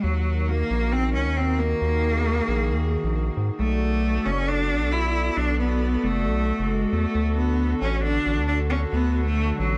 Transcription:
0.03 D#2 D#3 F#3 D#4 F#4 A#4
0.48 A#3
0.70 A#1
0.92 C4
1.14 C#2 C#4
1.26 D#2
1.37 C4
1.59 A#3
1.81 D#2 G#4
2.48 A#1
2.70 D#2
3.03 A#1
3.37 G#2
3.59 B1 A3 B3 F#4 A4 D5
4.26 F#1 C#4
4.48 D4
4.70 A1
4.81 B1
4.92 E4
5.37 B1 D4
5.59 B3
6.03 F#1 A3
6.26 B1
6.59 F#1
6.70 G#3
6.92 E2 A3
7.14 D2 D3 D4
7.37 B3
7.81 A1 C#4
8.03 D4
8.26 A1
8.37 D2
8.48 D4
8.70 C#4
8.92 D2 B3
9.26 A3
9.59 A1 F#3

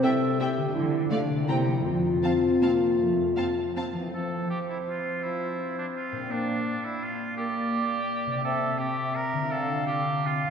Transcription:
Already playing: C3 C4 G4 E5
0.03 G3 C4 E4 A4 E5 G5
0.39 G3 C4 E4 G4 E5 G5
0.57 D3
0.61 A3
0.66 F4
0.70 D5
0.75 D3 E4
1.10 A3 D4 F4 D5 F5
1.30 C3
1.35 C4
1.39 G4
1.44 A#4
1.48 C3 A#3 C4 E4 G4 G5 A#5
1.67 F3
1.72 C4
1.76 F4
1.80 A4
1.85 F2 F4
2.23 C4 F5 A5
2.62 A#3 C4 F5 A5
2.99 F2 A3
3.37 F3 C4 F5 A5
3.76 C4 F5 A5
3.94 E3 F3
3.99 C4
4.03 F4
4.07 A4
4.12 F3 C4 A4 C5
4.50 G4
4.70 E4
4.90 F4
5.23 F3 E4
5.78 D4
5.96 F4
6.12 A#2
6.17 D4
6.21 G4
6.26 D5
6.30 A#3 D4 D5
6.84 E4
7.03 F4
7.36 A#3 G4
8.26 C3
8.31 C4
8.35 G4
8.40 C4 E5
8.44 C4 A4 E5
8.78 C4 G4 E5
9.15 A#4
9.33 D3
9.38 C4
9.42 F4
9.46 D3 F5
9.50 C4 A4 F5
9.87 G4
10.25 C4 F4 F5
10.44 C3

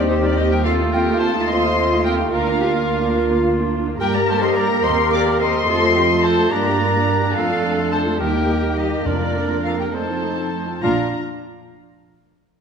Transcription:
Already playing: D#2 C4 D#4 G4
0.07 D#3 C4 D#4 C5
0.22 G3 D4 D#4 F4 D5
0.36 D#3 C4 D#4 G4 D#5
0.50 G3 D#4 G4 A#4 G5
0.64 A3 C4 F4 A4 F5
0.80 A3 D#4
0.92 C4 F4 G4 A#4 G5
1.08 A3 D#4
1.19 C4 F4 A4 C5 A5
1.35 A3 D#4
1.47 A3 C4 F4 C5 D#5 C6
1.64 A3 D#4
1.77 C4 F4
1.92 A3 D#4
2.03 C4 F4 G4 A#4 G5
2.19 A3 D#4
2.32 D2 A#3 D4 F4 A#4 F5
2.47 A#3 D4
2.60 D4 F4 G4
2.74 A#3 D4
2.88 D4 F4
3.02 A#3 D4
3.16 D4 F4
3.30 A#3 D4
3.44 D4 F4
3.59 A#3 D4
3.74 D4 F4
3.87 A#3 D4
3.99 G2 G3 A#3 G4 A#4 G5
4.13 A#3 A#4 D5 A#5
4.27 G3 G4 A4 C5 A5
4.41 A#3 A#4 C5 D#5 C6
4.54 G3 G4 A#4 D5 A#5
4.69 A#3 A#4
4.83 D#2 A#3 C4 G4 C5 D#5 C6
4.99 A#3 A#4
5.11 C4 G4 D5 F5 D6
5.26 A#3 A#4
5.39 C4 G4 C5 D#5 C6
5.54 A#3 A#4
5.67 F2 A3 C4 F4 A4
5.81 A3 A4
5.96 C4 F4 G4
6.10 A3 A4
6.23 C4 F4 A4 C5 A5
6.39 A3 A4
6.51 G2 G3 A#3 D4 G4 A#4 D5 A#5
6.66 A#3 G4
6.80 G3 D4 F4
6.94 A#3 G4
7.07 G3 D4 G4
7.22 A#3 G4
7.34 F2 F3 A3 D4 F4 A4 F5
7.48 A3 F4
7.62 F3 D4
7.77 A3 F4
7.90 F3 D4 A4 C5 A5
8.06 A3 F4
8.19 D#2 G3 A#3 D#4 G4 A#4 G5
8.32 A#3 G4
8.47 G3 D#4
8.61 A#3 G4
8.75 G3 D#4 G4 D#5
8.90 A#3 G4
9.05 F2 F3 A#3 D4 F4 A#4 D5
9.20 A#3 F4
9.33 F3 D4
9.48 A#3 F4
9.63 F3 D4 F4 A4 F5
9.77 A#3 F4 A#4 G5
9.81 G4
9.92 A3 C4 D#4 A4 C5 A5
10.07 C4 F4
10.23 A3 D#4
10.37 C4 F4
10.51 A3 D#4
10.66 C4 F4
10.80 A#1 A#2 D4 F4 A#4 F5 A#5

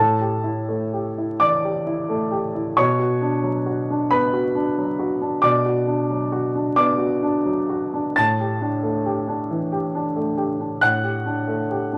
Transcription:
Already playing: E4 A5
0.00 A2 A4
0.21 G4
0.44 E4
0.69 A3
0.93 G4
1.18 E4
1.40 E3 D5 D6
1.64 G4
1.87 E4
2.09 A3
2.31 G4
2.55 E4
2.77 B2 C#5 C#6
2.99 F#4
3.22 D4
3.43 F#3
3.66 F#4
3.90 D4
4.11 B3 B4 B5
4.33 F#4
4.55 D4
4.78 F#3
4.99 F#4
5.21 D4
5.42 B2 D5 D6
5.66 F#4
5.87 D4
6.11 F#3
6.32 F#4
6.55 D4
6.76 B3 D5 D6
6.98 F#4
7.23 D4
7.45 F#3
7.69 F#4
7.94 D4
8.16 A2 A5 A6
8.40 G4
8.61 D4
8.83 A3
9.06 G4
9.28 D4
9.51 E3
9.72 G4
9.95 D4
10.16 A3
10.37 G4
10.60 D4
10.81 A2 F#5 F#6
11.03 G4
11.26 D4
11.48 A3
11.71 G4
11.93 D4

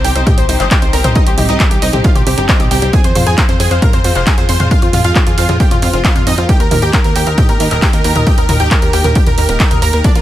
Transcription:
Already playing: C3 C4 D#4 G4
0.04 C2 C4 G4 G5, open hi-hat
0.15 C2 C5 D#5, closed hi-hat
0.26 G4 D#5 G5, kick, closed hi-hat, mid tom
0.37 C2 C5, closed hi-hat
0.49 C2 D#4 C5, open hi-hat
0.60 G1 C5 D#5, clap, closed hi-hat
0.71 G4 G5, kick, clap, closed hi-hat
0.82 C2 D#4 C5, closed hi-hat
0.93 C2 C4 A#4 A#5, open hi-hat
1.04 C2 C5 D#5, closed hi-hat, mid tom
1.15 D#4 D#5, kick, closed hi-hat
1.27 C2 G4 C5, closed hi-hat
1.38 C2 D#4 G4, open hi-hat, mid tom
1.49 C2 D#4 D#5, closed hi-hat
1.60 G4, kick, clap, closed hi-hat
1.71 C2 G4, closed hi-hat
1.82 C2 C4 D#4 D#5, open hi-hat
1.93 C2 C4 G4, closed hi-hat, mid tom
2.04 F4 F5, kick, closed hi-hat
2.15 C2 G4 C5, closed hi-hat, mid tom
2.27 C2 C4 G4, open hi-hat
2.38 G1 C4 G4, closed hi-hat
2.49 D#4 C5 D#5, kick, clap, closed hi-hat
2.60 C2 G4 D#5, closed hi-hat, mid tom
2.71 C2 C4 G4 G5, open hi-hat
2.82 C2 C4 G4, closed hi-hat
2.93 G#3 C4 F4 G#4 G#5, kick, closed hi-hat
3.04 F2 C5, closed hi-hat
3.15 F2 F4 C5, open hi-hat, mid tom
3.27 F2 G#4 G#5, closed hi-hat
3.38 C5, kick, clap, closed hi-hat
3.49 F2 C4 C5, closed hi-hat
3.60 F2 C4 G#4 G#5, open hi-hat
3.71 F2 C5 F5, closed hi-hat
3.82 A#4 F5 A#5, kick, closed hi-hat, mid tom
3.93 F2 C5, closed hi-hat
4.04 F2 F4 C5, open hi-hat
4.15 F1 C5 F5, clap, closed hi-hat
4.27 G#4 G#5, kick, clap, closed hi-hat
4.38 F2 F4 C5, closed hi-hat
4.49 F2 C4 C5 C6, open hi-hat
4.60 F2 C5 F5, closed hi-hat, mid tom
4.71 F4 F5, kick, closed hi-hat
4.82 F2 F4 C5, closed hi-hat
4.93 F2 F4, open hi-hat, mid tom
5.04 F2 F4 F5, closed hi-hat
5.15 F4, kick, clap, closed hi-hat
5.27 F2 F4 G#4, closed hi-hat
5.38 F2 C4 F4 F5, open hi-hat
5.49 F2 C4 F4, closed hi-hat, mid tom
5.60 G4 G5, kick, closed hi-hat
5.71 F2 F4 C5, closed hi-hat, mid tom
5.82 F2 C4 F4, open hi-hat
5.93 F1 C4 F4, closed hi-hat
6.04 F4 C5 F5, kick, clap, closed hi-hat
6.16 F2 F4 F5, closed hi-hat, mid tom
6.27 F2 C4 D#4 D#5, open hi-hat
6.38 F2 C4 F4, closed hi-hat
6.49 D#3 A#3 D#4 G4 A#4 G5, kick, closed hi-hat
6.60 D#2 A#4, closed hi-hat
6.71 D#2 D#4 A#4, open hi-hat, mid tom
6.82 D#2 G4 G5, closed hi-hat
6.93 A#4, kick, clap, closed hi-hat
7.04 D#2 A#3 A#4, closed hi-hat
7.16 D#2 A#3 G4 G5, open hi-hat
7.27 D#2 A#4 D#5, closed hi-hat
7.38 G4 D#5 G5, kick, closed hi-hat, mid tom
7.49 D#2 A#4, closed hi-hat
7.60 D#2 D#4 A#4, open hi-hat
7.71 D#1 A#4 D#5, clap, closed hi-hat
7.82 G4 G5, kick, clap, closed hi-hat
7.93 D#2 D#4 A#4, closed hi-hat
8.04 D#2 A#3 A#4 A#5, open hi-hat
8.16 D#2 A#4 D#5, closed hi-hat, mid tom
8.27 G4 D#5 G5, kick, closed hi-hat
8.38 D#2 A#4, closed hi-hat
8.49 D#2 D#4 A#4, open hi-hat, mid tom
8.60 D#2 G4 G5, closed hi-hat
8.71 A#4, kick, clap, closed hi-hat
8.82 D#2 G4 A#4, closed hi-hat
8.93 D#2 A#3 G4 G5, open hi-hat
9.04 D#2 A#3 A#4, closed hi-hat, mid tom
9.15 G4 G5, kick, closed hi-hat
9.27 D#2 A#4, closed hi-hat, mid tom
9.38 D#2 A#3 A#4, open hi-hat
9.49 D#1 A#3 A#4, closed hi-hat
9.60 G4 A#4 G5, kick, clap, closed hi-hat
9.71 D#2 A#4 D#5, closed hi-hat, mid tom
9.82 D#2 A#3 A#4 A#5, open hi-hat
9.93 D#2 A#3 A#4, closed hi-hat
10.04 F3 A#3 D4 D5, kick, closed hi-hat
10.15 A#1 F4 A#4, closed hi-hat

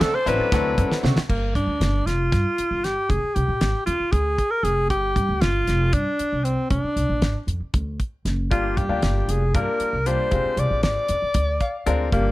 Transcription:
Already playing: D4 A4 D5 G#5 A5
0.00 D3 A3 C4 F#4 A4, snare, closed hi-hat
0.15 C5
0.26 A1 F#3 C4 D4 E4 B4 C5, closed hi-hat
0.39 muted upright bass stroke
0.52 D2 F#3 A3 C4 D4 E4 F#4 A4, kick, snare, closed hi-hat
0.78 F#2, kick, closed hi-hat
0.90 muted upright bass stroke, snare
1.03 D3 A3 C4 F#4, snare
1.17 muted upright bass stroke, snare
1.29 G1 A#3, kick, crash
1.55 G2 D4, kick, closed hi-hat
1.67 D2
1.80 G1, snare, closed hi-hat
2.06 F1 F4, snare, closed hi-hat
2.32 G2, kick, snare, closed hi-hat
2.58 muted upright bass stroke, closed hi-hat
2.71 G1
2.84 G4, snare, closed hi-hat
3.09 F1 G#4, kick, closed hi-hat
3.23 muted upright bass stroke
3.35 C2 G4, closed hi-hat
3.48 A#1
3.61 G#1, snare, closed hi-hat
3.86 F2 F4, closed hi-hat
4.00 muted upright bass stroke
4.12 D2 G#4, kick, closed hi-hat
4.38 kick, closed hi-hat
4.51 A#4
4.63 F1 G#4, closed hi-hat
4.90 G1 G4, kick, closed hi-hat
5.16 G2, kick, closed hi-hat
5.29 D2
5.41 G1 F4, snare, closed hi-hat
5.67 F1, snare, closed hi-hat
5.93 G2 D4, kick, closed hi-hat
6.19 muted upright bass stroke, closed hi-hat
6.33 C2
6.44 C4, closed hi-hat
6.70 F1 D4, kick, closed hi-hat
6.84 muted upright bass stroke
6.96 C2, closed hi-hat
7.09 A#1
7.22 G#1, snare, closed hi-hat
7.47 F2, closed hi-hat
7.60 muted upright bass stroke
7.74 D2, kick, closed hi-hat
8.00 kick, closed hi-hat
8.25 F#1, snare, closed hi-hat
8.51 G1 G3 A#3 D4 F4 G4, kick, closed hi-hat
8.77 G2 G4, kick, closed hi-hat
8.89 D2 G3 A#3 D4 F4 G4
9.02 G1, snare, closed hi-hat
9.28 F1 G#4, closed hi-hat
9.54 G2 G3 A#3 D4 F4 A#4, kick, closed hi-hat
9.80 muted upright bass stroke, closed hi-hat
9.93 C2
10.06 G3 A#3 D4 F4 G4 C5, closed hi-hat
10.31 F1 G#3 C4 D4 F4 G4, kick, closed hi-hat
10.45 muted upright bass stroke
10.57 C2 D5, closed hi-hat
10.70 A#1
10.83 G#1 D5, snare, closed hi-hat
11.08 F2, closed hi-hat
11.22 muted upright bass stroke
11.34 D2, kick, closed hi-hat
11.60 F5, kick, closed hi-hat
11.86 D2 G#3 C4 D4 F4 A#4 D5, closed hi-hat
12.12 G1 G3 A#3 D4 F4 G4, kick, closed hi-hat

